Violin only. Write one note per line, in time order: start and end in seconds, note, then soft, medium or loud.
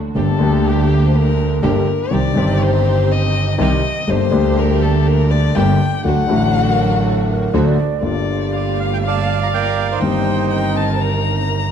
0.19 0.69 A4 medium
0.68 1.06 G4 medium
1.06 1.17 C5 medium
1.16 1.63 A#4 medium
1.64 2.14 A#4 medium
2.13 2.63 D5 medium
2.62 3.14 C5 medium
3.12 3.60 D#5 medium
3.60 4.11 D#5 medium
4.10 4.60 C5 loud
4.59 4.84 A#4 medium
4.82 5.08 A4 medium
5.07 5.32 A#4 medium
5.31 5.57 D5 medium
5.55 6.05 G5 medium
6.06 7.50 F#5 loud
8.03 8.54 D5 medium
8.52 10.02 F5 medium
10.01 10.50 G5 medium
10.51 10.78 G5 medium
10.77 11.02 A5 medium
11.01 11.72 A#5 medium